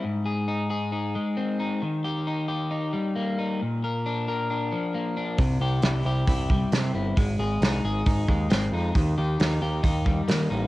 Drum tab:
HH |--------|--------|--------|o-o-o-o-|
SD |--------|--------|--------|--o---o-|
BD |--------|--------|--------|o---oo--|

HH |o-o-o-o-|o-o-o-o-|
SD |--o---o-|--o---o-|
BD |o---oo--|o---oo--|